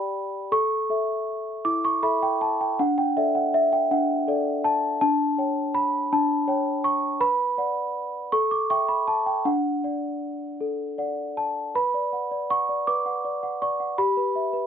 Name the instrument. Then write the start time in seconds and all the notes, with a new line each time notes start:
celesta
Already playing: G4 D5 G5 B5
0.52 A4 C#6
0.90 A4 E5
1.65 E4 D6
1.85 C#6
2.03 A4 E5 B5
2.23 G5
2.41 A5
2.61 G5
2.79 D4 F#5
2.98 G5
3.17 A4 D5 E5
3.35 F#5
3.54 E5
3.73 G5
3.91 D4 F#5
4.28 A4 D5
4.64 A5
5.01 D4 A5
5.38 C#5 G5
5.75 B5
6.13 D4 A5
6.48 C#5 G5
6.84 C#6
7.20 B4 B5
7.58 D5 F#5
8.32 A4 C#6
8.51 D6
8.70 E5 G5 C#6
8.88 B5
9.08 A5
9.26 G5
9.45 D4 F#5
9.84 D5 F#5
10.61 A4
10.98 D5 F#5
11.37 A5
11.75 B4 B5
11.94 D5
12.13 F#5
12.31 D5
12.50 F#5 C#6
12.69 D5
12.87 B4 D6
13.06 F#5
13.25 D5
13.43 F#5
13.62 D5 C#6
13.80 F#5
13.98 G4 B5
14.17 B4
14.36 E5
14.53 B4